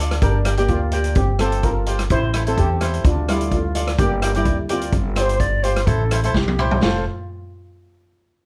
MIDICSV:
0, 0, Header, 1, 6, 480
1, 0, Start_track
1, 0, Key_signature, -1, "major"
1, 0, Tempo, 471328
1, 1189, Time_signature, 4, 2, 24, 8
1, 8612, End_track
2, 0, Start_track
2, 0, Title_t, "Flute"
2, 0, Program_c, 0, 73
2, 5269, Note_on_c, 0, 74, 101
2, 5309, Note_on_c, 0, 72, 110
2, 5319, Note_off_c, 0, 74, 0
2, 5500, Note_on_c, 0, 74, 115
2, 5515, Note_off_c, 0, 72, 0
2, 5737, Note_on_c, 0, 72, 105
2, 5752, Note_off_c, 0, 74, 0
2, 5971, Note_on_c, 0, 69, 94
2, 5986, Note_off_c, 0, 72, 0
2, 6340, Note_off_c, 0, 69, 0
2, 6347, Note_on_c, 0, 69, 80
2, 6455, Note_off_c, 0, 69, 0
2, 6466, Note_on_c, 0, 67, 76
2, 6913, Note_off_c, 0, 67, 0
2, 6960, Note_on_c, 0, 69, 80
2, 7177, Note_off_c, 0, 69, 0
2, 8612, End_track
3, 0, Start_track
3, 0, Title_t, "Cavaquinho"
3, 0, Program_c, 1, 24
3, 0, Note_on_c, 1, 65, 74
3, 2, Note_on_c, 1, 69, 73
3, 8, Note_on_c, 1, 74, 80
3, 142, Note_off_c, 1, 65, 0
3, 145, Note_off_c, 1, 69, 0
3, 149, Note_off_c, 1, 74, 0
3, 225, Note_on_c, 1, 67, 72
3, 228, Note_on_c, 1, 70, 70
3, 237, Note_on_c, 1, 74, 67
3, 377, Note_off_c, 1, 67, 0
3, 379, Note_off_c, 1, 70, 0
3, 381, Note_off_c, 1, 74, 0
3, 456, Note_on_c, 1, 67, 80
3, 464, Note_on_c, 1, 74, 89
3, 465, Note_on_c, 1, 70, 64
3, 540, Note_off_c, 1, 67, 0
3, 542, Note_off_c, 1, 70, 0
3, 543, Note_off_c, 1, 74, 0
3, 588, Note_on_c, 1, 67, 82
3, 594, Note_on_c, 1, 70, 71
3, 599, Note_on_c, 1, 74, 86
3, 807, Note_off_c, 1, 67, 0
3, 810, Note_off_c, 1, 70, 0
3, 812, Note_off_c, 1, 74, 0
3, 947, Note_on_c, 1, 67, 79
3, 951, Note_on_c, 1, 70, 72
3, 956, Note_on_c, 1, 74, 72
3, 1188, Note_off_c, 1, 67, 0
3, 1191, Note_off_c, 1, 70, 0
3, 1191, Note_off_c, 1, 74, 0
3, 1428, Note_on_c, 1, 65, 73
3, 1434, Note_on_c, 1, 72, 90
3, 1435, Note_on_c, 1, 67, 62
3, 1720, Note_off_c, 1, 65, 0
3, 1720, Note_off_c, 1, 67, 0
3, 1723, Note_off_c, 1, 72, 0
3, 1906, Note_on_c, 1, 65, 80
3, 1912, Note_on_c, 1, 67, 71
3, 1916, Note_on_c, 1, 72, 74
3, 2057, Note_off_c, 1, 65, 0
3, 2061, Note_off_c, 1, 67, 0
3, 2061, Note_off_c, 1, 72, 0
3, 2145, Note_on_c, 1, 64, 68
3, 2154, Note_on_c, 1, 69, 61
3, 2155, Note_on_c, 1, 72, 80
3, 2298, Note_off_c, 1, 64, 0
3, 2299, Note_off_c, 1, 69, 0
3, 2302, Note_off_c, 1, 72, 0
3, 2385, Note_on_c, 1, 64, 78
3, 2391, Note_on_c, 1, 69, 69
3, 2400, Note_on_c, 1, 72, 72
3, 2464, Note_off_c, 1, 64, 0
3, 2467, Note_off_c, 1, 69, 0
3, 2469, Note_off_c, 1, 72, 0
3, 2511, Note_on_c, 1, 64, 75
3, 2519, Note_on_c, 1, 69, 72
3, 2525, Note_on_c, 1, 72, 91
3, 2728, Note_off_c, 1, 64, 0
3, 2732, Note_off_c, 1, 69, 0
3, 2735, Note_off_c, 1, 72, 0
3, 2859, Note_on_c, 1, 64, 81
3, 2869, Note_on_c, 1, 69, 66
3, 2872, Note_on_c, 1, 72, 90
3, 3106, Note_off_c, 1, 64, 0
3, 3107, Note_off_c, 1, 69, 0
3, 3110, Note_off_c, 1, 72, 0
3, 3345, Note_on_c, 1, 65, 71
3, 3348, Note_on_c, 1, 69, 63
3, 3351, Note_on_c, 1, 74, 87
3, 3637, Note_off_c, 1, 69, 0
3, 3639, Note_off_c, 1, 65, 0
3, 3641, Note_off_c, 1, 74, 0
3, 3821, Note_on_c, 1, 65, 74
3, 3831, Note_on_c, 1, 69, 74
3, 3837, Note_on_c, 1, 74, 88
3, 3975, Note_off_c, 1, 65, 0
3, 3979, Note_off_c, 1, 69, 0
3, 3982, Note_off_c, 1, 74, 0
3, 4055, Note_on_c, 1, 67, 71
3, 4062, Note_on_c, 1, 70, 59
3, 4066, Note_on_c, 1, 74, 80
3, 4212, Note_off_c, 1, 67, 0
3, 4214, Note_off_c, 1, 70, 0
3, 4217, Note_off_c, 1, 74, 0
3, 4300, Note_on_c, 1, 67, 77
3, 4307, Note_on_c, 1, 74, 89
3, 4310, Note_on_c, 1, 70, 70
3, 4382, Note_off_c, 1, 67, 0
3, 4383, Note_off_c, 1, 70, 0
3, 4384, Note_off_c, 1, 74, 0
3, 4432, Note_on_c, 1, 67, 81
3, 4436, Note_on_c, 1, 70, 73
3, 4444, Note_on_c, 1, 74, 91
3, 4648, Note_off_c, 1, 67, 0
3, 4651, Note_off_c, 1, 70, 0
3, 4654, Note_off_c, 1, 74, 0
3, 4778, Note_on_c, 1, 67, 75
3, 4786, Note_on_c, 1, 70, 66
3, 4791, Note_on_c, 1, 74, 91
3, 5024, Note_off_c, 1, 67, 0
3, 5026, Note_off_c, 1, 70, 0
3, 5030, Note_off_c, 1, 74, 0
3, 5250, Note_on_c, 1, 65, 76
3, 5258, Note_on_c, 1, 67, 66
3, 5265, Note_on_c, 1, 72, 78
3, 5550, Note_off_c, 1, 65, 0
3, 5554, Note_off_c, 1, 67, 0
3, 5557, Note_off_c, 1, 72, 0
3, 5741, Note_on_c, 1, 65, 95
3, 5750, Note_on_c, 1, 67, 76
3, 5750, Note_on_c, 1, 72, 99
3, 5895, Note_off_c, 1, 65, 0
3, 5897, Note_off_c, 1, 67, 0
3, 5899, Note_off_c, 1, 72, 0
3, 5985, Note_on_c, 1, 64, 81
3, 5990, Note_on_c, 1, 69, 74
3, 5995, Note_on_c, 1, 72, 92
3, 6137, Note_off_c, 1, 64, 0
3, 6137, Note_off_c, 1, 69, 0
3, 6141, Note_off_c, 1, 72, 0
3, 6228, Note_on_c, 1, 64, 93
3, 6233, Note_on_c, 1, 69, 90
3, 6239, Note_on_c, 1, 72, 105
3, 6304, Note_off_c, 1, 64, 0
3, 6307, Note_off_c, 1, 69, 0
3, 6310, Note_off_c, 1, 72, 0
3, 6358, Note_on_c, 1, 64, 94
3, 6364, Note_on_c, 1, 69, 87
3, 6368, Note_on_c, 1, 72, 104
3, 6470, Note_off_c, 1, 64, 0
3, 6470, Note_off_c, 1, 69, 0
3, 6474, Note_off_c, 1, 72, 0
3, 6711, Note_on_c, 1, 64, 96
3, 6716, Note_on_c, 1, 67, 88
3, 6724, Note_on_c, 1, 72, 101
3, 6943, Note_off_c, 1, 72, 0
3, 6949, Note_off_c, 1, 64, 0
3, 6952, Note_off_c, 1, 67, 0
3, 6955, Note_on_c, 1, 65, 85
3, 6957, Note_on_c, 1, 72, 94
3, 6959, Note_on_c, 1, 69, 80
3, 7174, Note_off_c, 1, 72, 0
3, 7175, Note_off_c, 1, 65, 0
3, 7177, Note_off_c, 1, 69, 0
3, 8612, End_track
4, 0, Start_track
4, 0, Title_t, "Steel pan"
4, 0, Program_c, 2, 114
4, 0, Note_on_c, 2, 62, 74
4, 0, Note_on_c, 2, 69, 94
4, 200, Note_off_c, 2, 62, 0
4, 228, Note_on_c, 2, 70, 96
4, 238, Note_on_c, 2, 62, 80
4, 243, Note_off_c, 2, 69, 0
4, 575, Note_off_c, 2, 62, 0
4, 603, Note_on_c, 2, 67, 90
4, 607, Note_off_c, 2, 70, 0
4, 612, Note_on_c, 2, 58, 75
4, 709, Note_on_c, 2, 65, 97
4, 710, Note_off_c, 2, 58, 0
4, 716, Note_off_c, 2, 67, 0
4, 722, Note_on_c, 2, 58, 75
4, 1155, Note_off_c, 2, 65, 0
4, 1163, Note_off_c, 2, 58, 0
4, 1187, Note_on_c, 2, 67, 97
4, 1193, Note_on_c, 2, 60, 80
4, 1414, Note_off_c, 2, 60, 0
4, 1430, Note_on_c, 2, 69, 99
4, 1435, Note_off_c, 2, 67, 0
4, 1441, Note_on_c, 2, 60, 77
4, 1659, Note_off_c, 2, 60, 0
4, 1669, Note_on_c, 2, 70, 97
4, 1674, Note_on_c, 2, 65, 82
4, 1677, Note_off_c, 2, 69, 0
4, 2116, Note_off_c, 2, 70, 0
4, 2118, Note_off_c, 2, 65, 0
4, 2157, Note_on_c, 2, 72, 112
4, 2165, Note_on_c, 2, 64, 79
4, 2499, Note_off_c, 2, 64, 0
4, 2527, Note_on_c, 2, 69, 96
4, 2531, Note_off_c, 2, 72, 0
4, 2531, Note_on_c, 2, 60, 78
4, 2625, Note_off_c, 2, 60, 0
4, 2637, Note_on_c, 2, 60, 75
4, 2637, Note_on_c, 2, 67, 100
4, 2638, Note_off_c, 2, 69, 0
4, 3080, Note_off_c, 2, 60, 0
4, 3118, Note_on_c, 2, 62, 87
4, 3123, Note_on_c, 2, 65, 72
4, 3127, Note_off_c, 2, 67, 0
4, 3340, Note_off_c, 2, 65, 0
4, 3360, Note_on_c, 2, 64, 90
4, 3361, Note_off_c, 2, 62, 0
4, 3364, Note_on_c, 2, 55, 74
4, 3580, Note_off_c, 2, 55, 0
4, 3602, Note_off_c, 2, 64, 0
4, 3608, Note_on_c, 2, 57, 71
4, 3608, Note_on_c, 2, 65, 90
4, 4045, Note_off_c, 2, 57, 0
4, 4091, Note_on_c, 2, 67, 96
4, 4092, Note_on_c, 2, 58, 77
4, 4093, Note_off_c, 2, 65, 0
4, 4422, Note_off_c, 2, 58, 0
4, 4451, Note_on_c, 2, 55, 72
4, 4452, Note_on_c, 2, 64, 89
4, 4458, Note_off_c, 2, 67, 0
4, 4772, Note_off_c, 2, 55, 0
4, 4807, Note_off_c, 2, 64, 0
4, 4809, Note_on_c, 2, 60, 63
4, 4815, Note_on_c, 2, 65, 84
4, 6437, Note_off_c, 2, 60, 0
4, 6440, Note_off_c, 2, 65, 0
4, 6948, Note_on_c, 2, 65, 81
4, 7171, Note_off_c, 2, 65, 0
4, 8612, End_track
5, 0, Start_track
5, 0, Title_t, "Upright bass"
5, 0, Program_c, 3, 32
5, 0, Note_on_c, 3, 38, 100
5, 185, Note_off_c, 3, 38, 0
5, 220, Note_on_c, 3, 31, 101
5, 664, Note_off_c, 3, 31, 0
5, 698, Note_on_c, 3, 38, 100
5, 1143, Note_off_c, 3, 38, 0
5, 1179, Note_on_c, 3, 31, 98
5, 2103, Note_off_c, 3, 31, 0
5, 2141, Note_on_c, 3, 33, 103
5, 2585, Note_off_c, 3, 33, 0
5, 2625, Note_on_c, 3, 40, 101
5, 3066, Note_off_c, 3, 40, 0
5, 3098, Note_on_c, 3, 38, 104
5, 4022, Note_off_c, 3, 38, 0
5, 4060, Note_on_c, 3, 31, 105
5, 4504, Note_off_c, 3, 31, 0
5, 4536, Note_on_c, 3, 38, 102
5, 4981, Note_off_c, 3, 38, 0
5, 5017, Note_on_c, 3, 31, 100
5, 5941, Note_off_c, 3, 31, 0
5, 5977, Note_on_c, 3, 33, 106
5, 6422, Note_off_c, 3, 33, 0
5, 6460, Note_on_c, 3, 36, 98
5, 6903, Note_off_c, 3, 36, 0
5, 6954, Note_on_c, 3, 29, 95
5, 7174, Note_off_c, 3, 29, 0
5, 8612, End_track
6, 0, Start_track
6, 0, Title_t, "Drums"
6, 112, Note_on_c, 9, 37, 89
6, 112, Note_on_c, 9, 42, 73
6, 214, Note_off_c, 9, 37, 0
6, 214, Note_off_c, 9, 42, 0
6, 221, Note_on_c, 9, 42, 65
6, 223, Note_on_c, 9, 36, 116
6, 323, Note_off_c, 9, 42, 0
6, 325, Note_off_c, 9, 36, 0
6, 458, Note_on_c, 9, 37, 96
6, 458, Note_on_c, 9, 42, 99
6, 560, Note_off_c, 9, 37, 0
6, 560, Note_off_c, 9, 42, 0
6, 584, Note_on_c, 9, 42, 72
6, 686, Note_off_c, 9, 42, 0
6, 695, Note_on_c, 9, 42, 61
6, 700, Note_on_c, 9, 36, 85
6, 797, Note_off_c, 9, 42, 0
6, 802, Note_off_c, 9, 36, 0
6, 932, Note_on_c, 9, 42, 83
6, 1034, Note_off_c, 9, 42, 0
6, 1058, Note_on_c, 9, 42, 69
6, 1159, Note_off_c, 9, 42, 0
6, 1171, Note_on_c, 9, 42, 60
6, 1180, Note_on_c, 9, 36, 122
6, 1273, Note_off_c, 9, 42, 0
6, 1281, Note_off_c, 9, 36, 0
6, 1415, Note_on_c, 9, 37, 99
6, 1415, Note_on_c, 9, 42, 84
6, 1517, Note_off_c, 9, 37, 0
6, 1517, Note_off_c, 9, 42, 0
6, 1548, Note_on_c, 9, 42, 65
6, 1650, Note_off_c, 9, 42, 0
6, 1661, Note_on_c, 9, 42, 61
6, 1663, Note_on_c, 9, 36, 82
6, 1763, Note_off_c, 9, 42, 0
6, 1764, Note_off_c, 9, 36, 0
6, 1898, Note_on_c, 9, 42, 83
6, 2000, Note_off_c, 9, 42, 0
6, 2024, Note_on_c, 9, 37, 80
6, 2024, Note_on_c, 9, 42, 64
6, 2126, Note_off_c, 9, 37, 0
6, 2126, Note_off_c, 9, 42, 0
6, 2137, Note_on_c, 9, 42, 61
6, 2143, Note_on_c, 9, 36, 114
6, 2239, Note_off_c, 9, 42, 0
6, 2245, Note_off_c, 9, 36, 0
6, 2379, Note_on_c, 9, 37, 99
6, 2379, Note_on_c, 9, 42, 85
6, 2481, Note_off_c, 9, 37, 0
6, 2481, Note_off_c, 9, 42, 0
6, 2512, Note_on_c, 9, 42, 66
6, 2614, Note_off_c, 9, 42, 0
6, 2623, Note_on_c, 9, 36, 85
6, 2624, Note_on_c, 9, 42, 62
6, 2725, Note_off_c, 9, 36, 0
6, 2725, Note_off_c, 9, 42, 0
6, 2859, Note_on_c, 9, 37, 82
6, 2859, Note_on_c, 9, 42, 89
6, 2961, Note_off_c, 9, 37, 0
6, 2961, Note_off_c, 9, 42, 0
6, 2990, Note_on_c, 9, 42, 62
6, 3092, Note_off_c, 9, 42, 0
6, 3102, Note_on_c, 9, 36, 116
6, 3102, Note_on_c, 9, 42, 69
6, 3204, Note_off_c, 9, 36, 0
6, 3204, Note_off_c, 9, 42, 0
6, 3346, Note_on_c, 9, 37, 99
6, 3346, Note_on_c, 9, 42, 87
6, 3447, Note_off_c, 9, 37, 0
6, 3447, Note_off_c, 9, 42, 0
6, 3469, Note_on_c, 9, 42, 67
6, 3571, Note_off_c, 9, 42, 0
6, 3579, Note_on_c, 9, 42, 63
6, 3580, Note_on_c, 9, 36, 79
6, 3681, Note_off_c, 9, 36, 0
6, 3681, Note_off_c, 9, 42, 0
6, 3817, Note_on_c, 9, 42, 98
6, 3919, Note_off_c, 9, 42, 0
6, 3945, Note_on_c, 9, 37, 84
6, 3945, Note_on_c, 9, 42, 70
6, 4047, Note_off_c, 9, 37, 0
6, 4047, Note_off_c, 9, 42, 0
6, 4059, Note_on_c, 9, 36, 115
6, 4061, Note_on_c, 9, 42, 68
6, 4161, Note_off_c, 9, 36, 0
6, 4163, Note_off_c, 9, 42, 0
6, 4299, Note_on_c, 9, 37, 95
6, 4299, Note_on_c, 9, 42, 97
6, 4401, Note_off_c, 9, 37, 0
6, 4401, Note_off_c, 9, 42, 0
6, 4425, Note_on_c, 9, 42, 70
6, 4526, Note_off_c, 9, 42, 0
6, 4533, Note_on_c, 9, 42, 68
6, 4537, Note_on_c, 9, 36, 89
6, 4635, Note_off_c, 9, 42, 0
6, 4639, Note_off_c, 9, 36, 0
6, 4777, Note_on_c, 9, 42, 88
6, 4879, Note_off_c, 9, 42, 0
6, 4903, Note_on_c, 9, 42, 68
6, 5005, Note_off_c, 9, 42, 0
6, 5014, Note_on_c, 9, 42, 62
6, 5016, Note_on_c, 9, 36, 106
6, 5116, Note_off_c, 9, 42, 0
6, 5118, Note_off_c, 9, 36, 0
6, 5256, Note_on_c, 9, 37, 87
6, 5256, Note_on_c, 9, 42, 94
6, 5357, Note_off_c, 9, 37, 0
6, 5357, Note_off_c, 9, 42, 0
6, 5389, Note_on_c, 9, 42, 68
6, 5491, Note_off_c, 9, 42, 0
6, 5498, Note_on_c, 9, 36, 81
6, 5499, Note_on_c, 9, 42, 61
6, 5600, Note_off_c, 9, 36, 0
6, 5601, Note_off_c, 9, 42, 0
6, 5739, Note_on_c, 9, 42, 82
6, 5841, Note_off_c, 9, 42, 0
6, 5868, Note_on_c, 9, 37, 86
6, 5868, Note_on_c, 9, 42, 61
6, 5970, Note_off_c, 9, 37, 0
6, 5970, Note_off_c, 9, 42, 0
6, 5979, Note_on_c, 9, 36, 111
6, 5980, Note_on_c, 9, 42, 59
6, 6081, Note_off_c, 9, 36, 0
6, 6082, Note_off_c, 9, 42, 0
6, 6222, Note_on_c, 9, 37, 91
6, 6222, Note_on_c, 9, 42, 88
6, 6324, Note_off_c, 9, 37, 0
6, 6324, Note_off_c, 9, 42, 0
6, 6350, Note_on_c, 9, 42, 64
6, 6452, Note_off_c, 9, 42, 0
6, 6461, Note_on_c, 9, 36, 82
6, 6464, Note_on_c, 9, 38, 67
6, 6563, Note_off_c, 9, 36, 0
6, 6566, Note_off_c, 9, 38, 0
6, 6596, Note_on_c, 9, 48, 72
6, 6698, Note_off_c, 9, 48, 0
6, 6708, Note_on_c, 9, 45, 99
6, 6810, Note_off_c, 9, 45, 0
6, 6834, Note_on_c, 9, 43, 98
6, 6936, Note_off_c, 9, 43, 0
6, 6949, Note_on_c, 9, 38, 102
6, 7050, Note_off_c, 9, 38, 0
6, 8612, End_track
0, 0, End_of_file